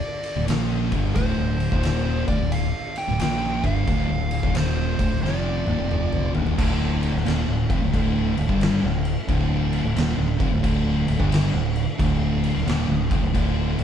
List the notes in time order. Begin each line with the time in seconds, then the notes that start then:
Already playing: D4 F4 A4 D5
0.24 ride
0.35 D1 D2 A2
0.48 A#1 A#2 F3 A#3, snare, ride
0.92 G1 G2 D3 G3, kick, ride
1.15 D1 D2 A2 C5, kick, ride
1.37 D1 D2 A2
1.60 ride
1.72 D#1 D#2 A#2 D#3, kick
1.83 snare, ride
2.28 D1 D2 A2 D5, kick, ride
2.40 D1 D2 A2
2.52 F5, ride
2.96 G5, ride
3.08 D1 D2 A2
3.19 A#1 A#2 F3 A#3 G5, snare, ride
3.64 G1 G2 D3 G3 F5, kick, ride
3.87 D1 D2 A2, kick, ride
4.09 D1 D2 A2
4.31 ride
4.43 D#1 D#2 A#2 D#3, kick
4.55 C5, snare, ride
4.99 D1 D2 A2, kick, ride
5.11 D1 D2 A2
5.22 F1 F2 C3 F3 D5, snare
5.66 D#1 D#2 A#2, high tom
5.79 F1 F2 C3 F3
5.91 mid tom
6.13 mid tom
6.34 D#1 D#2 A#2 D#3, floor tom
6.47 floor tom
6.58 D1 D2 A2 D3 A3 D4 F4, kick, crash
7.03 crash
7.13 D1 D2 A2, snare
7.26 D#1 D#2 A#2, snare, crash
7.48 D1 D2 A2
7.69 F1 F2 C3, kick, crash
7.82 D1 D2 A2
7.93 D1 D2 A2 D3, kick, crash
8.37 D1 D2 A2, crash
8.49 G1 G2 D3 G3, kick
8.61 snare, crash
8.83 D1 D2 A2
9.05 crash
9.28 D1 D2 A2 D3, kick, crash
9.73 crash
9.84 D1 D2 A2
9.96 D#1 D#2 A#2, snare, crash
10.18 D1 D2 A2
10.40 F1 F2 C3, kick, crash
10.52 D1 D2 A2
10.63 D1 D2 A2 D3, kick, crash
11.07 D1 D2 A2, crash
11.20 G1 G2 D3 G3, kick
11.32 snare, crash
11.54 D1 D2 A2
11.76 crash
11.99 D1 D2 A2 D3, kick, crash
12.44 crash
12.55 D1 D2 A2, snare
12.66 D#1 D#2 A#2, snare, crash
12.89 D1 D2 A2
13.11 F1 F2 C3, kick, crash
13.23 D1 D2 A2
13.33 D1 D2 A2 D3, kick, crash
13.78 D1 D2 A2, crash